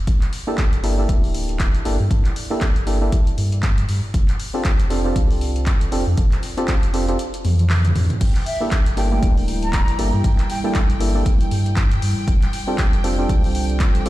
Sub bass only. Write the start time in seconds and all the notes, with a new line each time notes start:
0.07 G1
0.73 G1
1.09 D1
1.85 G1
2.00 G2
2.11 G1
2.76 G1
3.38 G2
3.89 G2
4.14 F1
4.80 F1
5.16 C2
5.92 F1
6.07 F2
6.18 F1
6.83 F1
7.45 F2
7.96 F2
8.21 G1
8.86 G1
9.23 D1
9.99 G1
10.13 G2
10.24 G1
10.90 G1
11.51 G2
12.02 G2
12.28 F1
12.93 F1
13.29 C2
14.06 F1